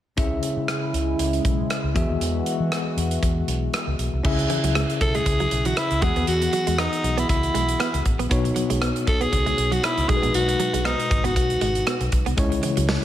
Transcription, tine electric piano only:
0.17 C#3 C#4 E4 G#4 E5
1.94 E3 B3 F#4 G#4 E5
4.24 C#3 C#4 E4 G#4 E5
6.02 E3 B3 F#4 G#4 F#5
8.30 B2 B3 D#4 F#4 C#5
10.08 B2 G#3 D#4 F#4 A4
10.16 B4
12.37 C#3 G#3 C#4 E4 C#5

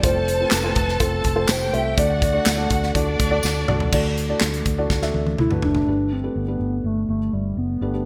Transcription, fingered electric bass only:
0.03 F1
0.52 F1
0.76 F1
1.00 F1
1.24 F1
1.49 F1
1.73 C2
1.98 D2
2.46 D2
2.70 D2
2.95 D2
3.19 D2
3.44 D2
3.68 C2
3.93 D2
4.41 D2
4.66 D2
4.90 D2
5.15 D2
5.39 D2
5.63 F#1
5.87 G1
6.36 G1
6.60 G1
6.84 G1
7.09 G1
7.33 G1
7.57 F#1
7.81 G1

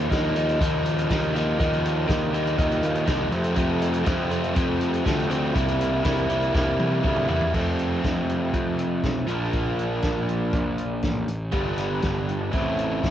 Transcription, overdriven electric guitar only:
Already playing: D#4
0.09 D#3 F3 A#3 D#4
0.36 D#3 F3 A#3 D#4
0.60 D#3 F3 A#3 D#4
1.09 D#3 F3 A#3 D#4
1.34 D#3 F3 A#3 D#4
1.58 D#3 F3 A#3 D#4
2.07 D#3 F3 A#3 D#4
2.33 D#3 F3 A#3 D#4
2.58 D#3 F3 A#3 D#4
3.07 D#3 F3 A#3 D#4
3.30 F2 C3 F3 A3 C4
3.55 F2 C3 F3 A3 C4
4.05 F2 C3 F3 A3 C4
4.30 F2 C3 F3 A3 C4
4.54 F2 C3 F3 A3 C4
5.04 F2 C3 F3 A3 C4
5.29 F2 C3 F3 A3 C4
5.54 C3 G3 A#3 E4
6.04 C3 G3 A#3 E4
6.29 C3 G3 A#3 E4
6.54 C3 G3 A#3 E4
7.03 C3 G3 A#3 E4
7.28 C3 G3 A#3 E4
7.52 F2 C3 F3 A3 C4
9.27 A#2 F3 A#3 D4
11.52 G2 D3 G3 B3 D4
12.52 A2 E3 A3 C4 E4

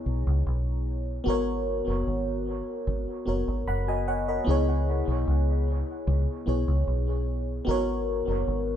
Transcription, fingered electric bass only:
0.06 B1
0.27 C#2
0.46 B1
1.27 G#1
1.87 F#1
2.07 G#1
2.87 G#1
3.27 F#1
3.48 G#1
3.67 F#1
4.47 C#2
5.08 B1
5.27 C#2
6.07 C#2
6.47 B1
6.68 C#2
6.87 B1
7.67 G#1
8.28 F#1
8.47 G#1

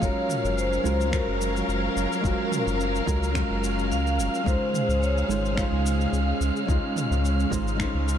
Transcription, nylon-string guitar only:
0.00 G#3 C#4 F4 F#4
0.05 A#4
0.83 G#3 C#4 F4 F#4 A#4
1.10 G#3 C#4 F4
1.14 F#4 A#4
2.21 G#3 C#4 F4
2.25 F#4 A#4
3.06 G#3 C#4 F4 F#4 A#4
3.32 G#3 C#4 F4
3.37 F#4 A#4
4.43 G#3 C#4 D#4
4.48 F4 C5
5.28 G#3 C#4 D#4 F4 C5
5.55 G#3 C#4 D#4
5.59 F4 C5
6.66 G#3 C#4 D#4
6.70 F4 C5
7.50 G#3 C#4 D#4 F4 C5
7.76 G#3 C#4 D#4
7.81 F4 C5

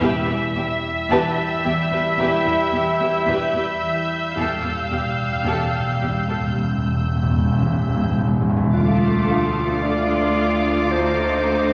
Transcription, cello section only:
0.01 E2
0.28 E2
0.56 E2
1.10 E2
1.65 E2
1.92 E2
2.18 E2
2.45 E2
2.72 E2
3.00 E2
3.26 E2
3.55 E2
4.36 E2
4.64 E2
4.91 E2
5.45 E2
6.01 E2
6.28 E2
8.74 D2

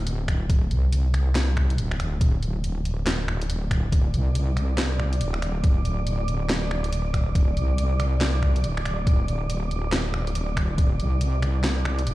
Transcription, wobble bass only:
Already playing: D1
0.71 C2
1.78 D1
2.21 D1
4.14 C2
5.21 D1
5.64 D1
7.57 C2
8.64 D1
9.07 D1
11.00 C2
12.07 D1

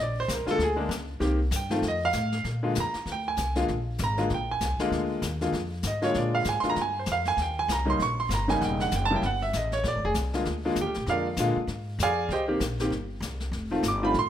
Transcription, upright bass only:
Already playing: A#1
0.28 C2
0.46 muted upright bass stroke
0.58 D2
0.89 C#2
1.20 C2
1.51 G2
1.82 F2
2.14 A2
2.44 A#2
2.76 F2
2.94 muted upright bass stroke
3.06 D2
3.38 C2
3.69 A#1
4.00 G#1
4.30 A#1
4.61 C2
4.79 muted upright bass stroke
4.90 D2
5.22 D#2
5.52 F2
5.83 G#2
6.15 A#2
6.45 G#2
6.63 muted upright bass stroke
6.76 G2
7.07 F2
7.37 D#2
7.68 C2
7.99 A#1
8.29 G1
8.62 E1
8.92 F#1
9.22 G1
9.53 A1
9.83 A#1
9.95 G#1
10.04 F1
10.14 C2
10.46 D2
10.76 D#2
10.86 D2
10.97 A#1
11.06 F2
11.37 A#2
11.56 muted upright bass stroke
11.67 G#2
11.99 F2
12.29 C2
12.60 A#1
12.90 G1
13.20 C2
13.52 F1
13.83 G1
14.14 A1

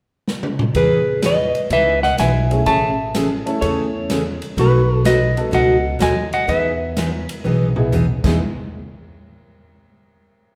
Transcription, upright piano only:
2.51 A3 C#4 E4 G#4
3.45 A3 C#4 E4 A4
5.36 B3 D#4 F#4 A4
7.76 B3 D#4 E4 G#4
8.24 G#3 B3 D#4 E4 G#4

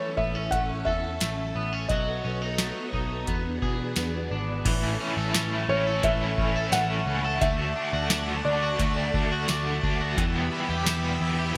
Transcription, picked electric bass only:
0.18 A1
0.52 A1
0.87 E2
1.21 A1
1.56 A1
1.90 B1
2.25 B1
2.93 B1
3.28 E2
3.62 B2
3.97 E2
4.31 G#1
4.66 A1
5.17 A1
5.34 A1
5.69 A1
6.04 A1
6.38 A1
6.72 A1
7.06 C#2
7.42 D2
7.93 D2
8.10 D2
8.45 D2
8.79 D2
9.14 D2
9.49 D2
9.84 D2
10.18 E2
10.69 E2
10.86 E2
11.21 E2

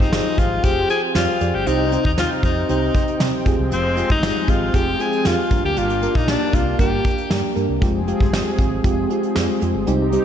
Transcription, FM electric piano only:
Already playing: F4 G4 G#4 C5
0.12 F4 G4 G#4 C5
0.38 F4 G4 G#4 C5
0.63 F4 G4 G#4 C5
0.89 F4 G4 G#4 C5
1.15 F4 G4 G#4 C5
1.40 F4 G4 G#4 D5
1.66 C3 C4 D#4 G4 C5
1.92 C4 D#4 G4 C5
2.17 C4 D#4 G4 C5
2.43 C4 D#4 G4 C5
2.69 C4 D#4 G4 C5
2.94 C4 D#4 G4 C5
3.20 C4 D#4 G4 C5
3.46 C4 F4 G4 G#4
3.97 C4 F4 G4 G#4
4.22 C4 F4 G4 G#4
4.48 C4 F4 G4 G#4
4.73 C4 F4 G4 G#4
4.99 C4 F4 G4 G#4
5.25 C4 F4 G4 G#4
5.50 G2 A#3 D4 G4 A#4
6.02 A#3 D4 G4 A#4
6.27 A#3 D4 G4 A#4
6.53 A#3 D4 G4 A#4
6.79 A#3 D4 G4 A#4
7.04 A#3 D4 G4 A#4
7.30 A#3 D4 G4 A#4
7.55 A#3 D4 G4 A#4
7.81 G#3 C4 F4 G4
8.07 G#3 C4 F4 G4
8.33 G#3 C4 F4 G4
8.58 G#3 C4 F4 G4
8.84 G#3 C4 F4 G4
9.10 G#3 C4 F4 G4
9.35 G#3 C4 F4 G4
9.61 G#3 C4 F4 G4
9.87 C3 G3 C4 D#4 G4
10.12 G3 C4 D#4 G4

